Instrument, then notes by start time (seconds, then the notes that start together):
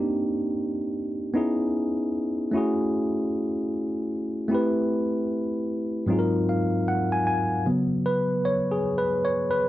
tine electric piano
Already playing: A#3 C4 D4 D#4 G4
1.34 B3 C#4 D#4 E4 G#4
2.51 A3 C#4 E4
2.56 F#4 G#4
4.48 A3 C4 E4
4.53 G4 B4
6.06 G#2 F#3 C4 D#4
6.11 F4 G#4
6.19 A#4
6.49 F5
6.88 F#5
7.12 G#5
7.27 G#5
7.66 C#3 F#3 B3
8.06 B4
8.45 C#5
8.72 G#4
8.98 B4
9.25 C#5
9.51 B4